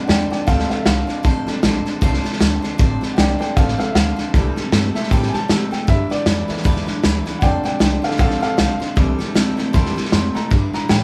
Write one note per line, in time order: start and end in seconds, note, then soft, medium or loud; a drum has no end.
0.00 0.45 G3 medium
0.00 0.45 A3 medium
0.00 0.45 D4 medium
0.04 0.31 A3 medium
0.04 0.29 D5 medium
0.04 0.07 F#5 medium
0.08 0.31 E2 loud
0.08 0.29 F2 medium
0.08 0.29 D3 medium
0.08 0.32 D4 medium
0.08 0.31 A4 medium
0.08 0.29 C5 medium
0.08 0.30 G5 loud
0.08 snare loud
0.08 hi-hat pedal medium
0.30 0.46 F2 medium
0.30 0.46 D3 medium
0.30 0.47 D4 soft
0.30 0.47 A4 soft
0.30 0.47 C5 medium
0.30 0.46 D5 medium
0.30 0.47 G5 medium
0.30 muted upright bass stroke medium
0.30 snare soft
0.46 0.70 D2 medium
0.46 0.83 F2 medium
0.46 0.83 C3 medium
0.46 0.70 F3 loud
0.46 0.67 G3 soft
0.46 0.68 A3 soft
0.46 0.70 A3 medium
0.46 0.68 D4 medium
0.46 0.70 D4 medium
0.46 0.68 A4 medium
0.46 0.70 A4 medium
0.46 0.68 C5 loud
0.46 0.69 F5 loud
0.46 kick loud
0.46 snare soft
0.59 snare soft
0.69 0.85 D4 soft
0.69 0.85 A4 medium
0.69 0.86 A4 soft
0.69 0.86 C5 soft
0.69 0.84 F5 medium
0.69 muted upright bass stroke medium
0.69 snare soft
0.82 1.08 A3 medium
0.82 0.85 E5 medium
0.86 1.08 C2 medium
0.86 1.07 F2 medium
0.86 1.07 D3 loud
0.86 1.09 D4 medium
0.86 1.07 A4 medium
0.86 1.06 C5 medium
0.86 1.61 F5 medium
0.86 snare loud
0.86 hi-hat pedal loud
1.07 1.23 F2 medium
1.07 1.23 D3 medium
1.07 1.23 D4 soft
1.07 1.24 A4 medium
1.07 1.24 C5 medium
1.07 snare soft
1.23 1.60 F2 medium
1.23 1.61 C3 loud
1.23 1.47 F3 medium
1.23 1.47 A3 medium
1.23 1.47 D4 medium
1.23 1.47 A4 medium
1.23 1.45 C5 loud
1.23 kick loud
1.23 snare soft
1.46 2.98 G3 medium
1.46 2.98 A3 medium
1.46 2.98 D4 medium
1.46 1.62 D4 medium
1.46 1.64 A4 medium
1.46 1.63 C5 medium
1.46 muted upright bass stroke soft
1.46 snare soft
1.63 1.85 A#1 loud
1.63 1.84 F2 medium
1.63 1.84 D3 medium
1.63 1.86 A3 medium
1.63 1.86 D4 medium
1.63 1.86 A4 medium
1.63 1.84 C5 medium
1.63 snare loud
1.63 hi-hat pedal medium
1.86 2.01 F2 medium
1.86 2.01 D3 medium
1.86 2.01 D4 soft
1.86 2.02 A4 medium
1.86 2.02 C5 medium
1.86 muted upright bass stroke medium
1.86 snare soft
2.01 2.24 C2 medium
2.01 2.38 F2 medium
2.01 2.38 C3 medium
2.01 2.24 F3 loud
2.01 2.25 A3 loud
2.01 2.25 D4 medium
2.01 2.25 A4 loud
2.01 2.23 C5 loud
2.01 kick loud
2.01 snare soft
2.14 snare soft
2.24 2.40 D4 soft
2.24 2.41 A4 medium
2.24 2.40 C5 medium
2.24 snare soft
2.33 snare soft
2.40 2.63 D2 loud
2.40 2.61 F2 medium
2.40 2.61 D3 loud
2.40 2.63 A3 medium
2.40 2.64 D4 medium
2.40 2.63 A4 medium
2.40 2.61 C5 medium
2.40 snare loud
2.40 hi-hat pedal medium
2.62 2.78 F2 medium
2.62 2.78 D3 medium
2.62 2.78 D4 medium
2.62 2.79 A4 medium
2.62 2.79 C5 medium
2.62 snare soft
2.78 3.01 A1 medium
2.78 3.15 F2 medium
2.78 3.15 C3 medium
2.78 3.01 F3 medium
2.78 3.02 A3 medium
2.78 3.02 D4 loud
2.78 3.02 A4 loud
2.78 3.00 C5 medium
2.78 kick loud
2.78 snare soft
3.01 3.17 D4 medium
3.01 3.18 A4 medium
3.01 3.18 C5 medium
3.01 snare soft
3.13 3.40 A3 medium
3.13 3.39 D5 medium
3.13 3.16 F#5 medium
3.18 3.40 C2 loud
3.18 3.38 F2 medium
3.18 3.38 D3 loud
3.18 3.41 D4 medium
3.18 3.39 A4 medium
3.18 3.37 C5 medium
3.18 3.39 G5 loud
3.18 snare loud
3.18 hi-hat pedal medium
3.39 3.55 F2 medium
3.39 3.55 D3 medium
3.39 4.29 G3 medium
3.39 4.30 A3 medium
3.39 4.30 D4 medium
3.39 3.56 D4 soft
3.39 3.57 A4 medium
3.39 3.56 C5 medium
3.39 3.55 D5 medium
3.39 3.56 G5 loud
3.39 snare soft
3.56 3.79 A1 medium
3.56 3.92 F2 medium
3.56 3.92 C3 medium
3.56 3.79 F3 medium
3.56 3.79 A3 medium
3.56 3.80 D4 loud
3.56 3.77 A4 medium
3.56 3.79 A4 medium
3.56 3.77 C5 medium
3.56 3.78 F5 medium
3.56 kick loud
3.56 snare soft
3.68 snare soft
3.78 3.95 D4 soft
3.78 3.94 A4 medium
3.78 3.96 A4 soft
3.78 3.95 C5 medium
3.78 3.94 F5 medium
3.78 snare soft
3.90 3.93 E5 medium
3.95 4.17 D2 loud
3.95 4.15 F2 medium
3.95 4.16 D3 medium
3.95 4.18 A3 medium
3.95 4.18 D4 medium
3.95 4.17 A4 medium
3.95 4.15 C5 medium
3.95 4.33 F5 medium
3.95 snare loud
3.95 hi-hat pedal loud
4.16 4.32 F2 medium
4.16 4.33 D3 medium
4.16 4.35 D4 soft
4.16 4.34 A4 medium
4.16 4.33 C5 medium
4.16 snare soft
4.33 4.55 C2 medium
4.33 4.69 C3 medium
4.33 4.57 C3 medium
4.33 4.91 E3 medium
4.33 4.57 E3 medium
4.33 4.70 G3 medium
4.33 4.57 G3 medium
4.33 4.92 A3 medium
4.33 4.57 C4 medium
4.33 4.92 D4 medium
4.33 4.56 G4 loud
4.33 4.55 A4 medium
4.33 kick loud
4.33 snare soft
4.56 4.71 G3 soft
4.56 4.72 C4 soft
4.56 4.73 G4 medium
4.56 4.72 A4 medium
4.56 muted upright bass stroke medium
4.56 snare soft
4.72 4.94 G2 medium
4.72 4.93 C3 medium
4.72 4.95 G3 medium
4.72 4.93 A3 medium
4.72 4.96 C4 medium
4.72 4.95 G4 medium
4.72 4.94 A4 medium
4.72 snare loud
4.72 hi-hat pedal medium
4.95 5.10 C3 medium
4.95 5.10 G3 soft
4.95 5.10 A3 medium
4.95 5.11 C4 medium
4.95 5.11 G4 medium
4.95 5.11 A4 medium
4.95 5.11 E5 medium
4.95 muted upright bass stroke medium
4.95 snare soft
5.03 snare soft
5.10 5.33 A2 medium
5.10 5.34 C3 medium
5.10 5.47 C3 medium
5.10 5.31 E3 soft
5.10 5.34 E3 medium
5.10 5.34 G3 medium
5.10 5.47 G3 loud
5.10 5.31 A3 soft
5.10 5.34 C4 medium
5.10 5.31 D4 medium
5.10 5.33 G4 loud
5.10 5.32 A4 loud
5.10 5.33 G5 medium
5.10 kick loud
5.10 snare soft
5.23 snare soft
5.29 5.49 A4 medium
5.29 5.32 G#5 medium
5.34 5.47 G3 soft
5.34 5.49 C4 soft
5.34 5.49 G4 soft
5.34 5.71 A5 loud
5.34 muted upright bass stroke medium
5.34 snare soft
5.48 5.70 C3 medium
5.48 5.72 C3 medium
5.48 5.72 G3 medium
5.48 5.70 A3 medium
5.48 5.72 C4 medium
5.48 5.71 G4 medium
5.48 5.70 A4 medium
5.48 snare loud
5.48 hi-hat pedal loud
5.71 5.87 C3 medium
5.71 5.86 G3 soft
5.71 5.87 A3 medium
5.71 5.88 C4 medium
5.71 5.88 G4 medium
5.71 5.88 A4 medium
5.71 5.88 G5 medium
5.71 muted upright bass stroke medium
5.71 snare soft
5.87 6.10 G2 medium
5.87 6.24 G2 medium
5.87 6.24 D3 medium
5.87 6.10 G3 medium
5.87 6.10 B3 medium
5.87 6.11 D4 medium
5.87 6.10 E4 medium
5.87 6.09 B4 medium
5.87 6.10 E5 loud
5.87 kick loud
5.87 snare soft
6.10 6.26 D4 soft
6.10 6.27 E4 soft
6.10 6.26 B4 medium
6.10 7.23 D5 loud
6.10 muted upright bass stroke medium
6.10 snare soft
6.26 6.48 F2 medium
6.26 6.47 G2 medium
6.26 6.48 E3 medium
6.26 6.49 B3 medium
6.26 6.50 D4 medium
6.26 6.49 E4 medium
6.26 6.47 B4 medium
6.26 snare loud
6.26 hi-hat pedal medium
6.48 6.64 G2 medium
6.48 7.38 E3 medium
6.48 6.64 E3 loud
6.48 7.38 A3 medium
6.48 7.39 B3 medium
6.48 6.64 D4 soft
6.48 6.65 E4 medium
6.48 6.65 B4 medium
6.48 muted upright bass stroke medium
6.48 snare soft
6.57 snare soft
6.64 6.87 E2 medium
6.64 7.01 G2 medium
6.64 7.01 D3 loud
6.64 6.87 G3 medium
6.64 6.88 B3 medium
6.64 6.88 D4 loud
6.64 6.86 E4 loud
6.64 6.85 B4 loud
6.64 kick loud
6.64 snare soft
6.76 snare soft
6.86 7.02 D4 medium
6.86 7.03 E4 medium
6.86 7.03 B4 medium
6.86 muted upright bass stroke medium
6.86 snare soft
7.03 7.26 D2 medium
7.03 7.24 G2 medium
7.03 7.24 E3 medium
7.03 7.26 B3 medium
7.03 7.26 D4 medium
7.03 7.26 E4 medium
7.03 7.24 B4 medium
7.03 snare loud
7.03 hi-hat pedal medium
7.26 7.41 G2 medium
7.26 7.41 E3 medium
7.26 7.41 D4 medium
7.26 7.43 E4 medium
7.26 7.42 B4 medium
7.26 snare soft
7.38 7.78 F2 medium
7.38 7.64 F2 medium
7.38 7.64 F3 medium
7.38 7.70 G3 medium
7.38 7.65 A3 medium
7.38 7.65 D4 medium
7.38 7.63 D5 loud
7.38 7.41 F#5 medium
7.38 kick loud
7.38 snare soft
7.42 7.78 C3 loud
7.42 7.70 A3 medium
7.42 7.70 D4 medium
7.42 7.64 A4 medium
7.42 7.62 C5 medium
7.42 7.64 G5 loud
7.63 7.79 D4 soft
7.63 7.80 A4 soft
7.63 7.80 C5 medium
7.63 7.79 D5 medium
7.63 7.80 G5 medium
7.63 muted upright bass stroke medium
7.63 snare soft
7.79 8.03 C2 medium
7.79 8.01 F2 medium
7.79 8.02 D3 medium
7.79 8.03 A3 medium
7.79 8.03 D4 medium
7.79 8.02 A4 medium
7.79 8.01 C5 medium
7.79 8.02 D5 medium
7.79 8.03 G5 medium
7.79 snare loud
7.79 hi-hat pedal medium
8.02 8.18 F2 medium
8.02 8.19 D3 medium
8.02 8.18 G3 soft
8.02 8.18 A3 soft
8.02 8.18 D4 medium
8.02 8.18 D4 soft
8.02 8.19 A4 medium
8.02 8.18 A4 medium
8.02 8.19 C5 medium
8.02 8.19 F5 medium
8.02 snare soft
8.11 snare soft
8.18 8.41 A#1 medium
8.18 8.55 F2 medium
8.18 8.56 C3 loud
8.18 8.42 F3 medium
8.18 8.42 A3 medium
8.18 8.42 D4 medium
8.18 8.40 A4 medium
8.18 8.41 A4 medium
8.18 8.39 C5 medium
8.18 8.41 F5 medium
8.18 kick loud
8.18 snare soft
8.30 snare soft
8.40 8.57 D4 medium
8.40 8.57 A4 medium
8.40 8.58 A4 soft
8.40 8.57 C5 medium
8.40 8.56 F5 loud
8.40 snare soft
8.57 8.80 B1 loud
8.57 8.78 F2 medium
8.57 8.79 D3 medium
8.57 8.80 A3 medium
8.57 8.81 D4 medium
8.57 8.81 A4 medium
8.57 8.79 C5 medium
8.57 8.96 F5 loud
8.57 snare loud
8.57 hi-hat pedal medium
8.80 8.95 F2 medium
8.80 8.96 D3 medium
8.80 8.96 D4 soft
8.80 8.96 A4 medium
8.80 8.96 C5 medium
8.80 muted upright bass stroke medium
8.80 snare soft
8.96 9.19 C2 medium
8.96 9.19 C3 medium
8.96 9.32 C3 medium
8.96 9.71 E3 medium
8.96 9.19 E3 medium
8.96 9.32 G3 medium
8.96 9.19 G3 medium
8.96 9.72 A3 medium
8.96 9.19 C4 medium
8.96 9.72 D4 medium
8.96 9.19 E4 medium
8.96 9.17 A4 medium
8.96 kick loud
8.96 snare soft
9.19 9.33 G3 medium
9.19 9.35 C4 medium
9.19 9.36 E4 medium
9.19 9.35 A4 medium
9.19 snare soft
9.34 9.56 D2 medium
9.34 9.56 C3 medium
9.34 9.58 G3 medium
9.34 9.56 A3 medium
9.34 9.58 C4 medium
9.34 9.57 E4 medium
9.34 9.56 A4 medium
9.34 snare loud
9.34 hi-hat pedal loud
9.57 9.72 C3 medium
9.57 9.73 G3 soft
9.57 9.72 A3 loud
9.57 9.73 C4 medium
9.57 9.74 E4 medium
9.57 9.73 A4 medium
9.57 muted upright bass stroke soft
9.57 snare soft
9.73 9.96 E2 medium
9.73 9.96 C3 loud
9.73 10.09 C3 medium
9.73 9.94 E3 medium
9.73 9.96 E3 medium
9.73 10.09 G3 loud
9.73 9.97 G3 medium
9.73 9.94 A3 soft
9.73 9.97 C4 medium
9.73 9.94 D4 medium
9.73 9.96 E4 medium
9.73 9.95 A4 loud
9.73 9.96 C6 medium
9.73 kick loud
9.73 snare soft
9.86 snare soft
9.96 10.11 G3 soft
9.96 10.12 C4 soft
9.96 10.13 E4 soft
9.96 10.12 A4 medium
9.96 snare soft
10.05 snare soft
10.12 10.35 F2 loud
10.12 10.33 C3 medium
10.12 10.35 G3 medium
10.12 10.33 A3 loud
10.12 10.35 C4 medium
10.12 10.35 E4 medium
10.12 10.33 A4 medium
10.12 10.35 C6 loud
10.12 snare loud
10.12 hi-hat pedal medium
10.34 10.49 C3 medium
10.34 10.49 G3 medium
10.34 10.50 A3 medium
10.34 10.51 C4 medium
10.34 10.51 E4 soft
10.34 10.51 A4 medium
10.34 10.51 A#5 medium
10.34 muted upright bass stroke medium
10.34 snare soft
10.50 10.86 G2 medium
10.50 10.73 G2 loud
10.50 10.87 D3 medium
10.50 10.73 G3 medium
10.50 10.74 D4 medium
10.50 10.74 E4 medium
10.50 10.72 B4 medium
10.50 kick loud
10.50 snare soft
10.73 10.89 D4 soft
10.73 10.90 E4 soft
10.73 10.90 B4 medium
10.73 10.89 A#5 loud
10.73 muted upright bass stroke medium
10.73 snare soft
10.89 11.04 G2 medium
10.89 11.04 A2 loud
10.89 11.04 E3 loud
10.89 11.04 G3 medium
10.89 11.04 D4 medium
10.89 11.04 E4 medium
10.89 11.04 B4 medium
10.89 11.04 G5 medium
10.89 snare loud
10.89 hi-hat pedal medium